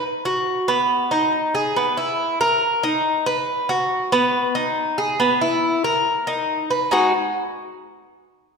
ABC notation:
X:1
M:4/4
L:1/8
Q:1/4=140
K:B
V:1 name="Cuban tres"
z F2 B,2 D2 G | B, E2 A2 D2 B- | B F2 B,2 D2 G | B, E2 A2 D2 B |
[G,DF] z6 z |]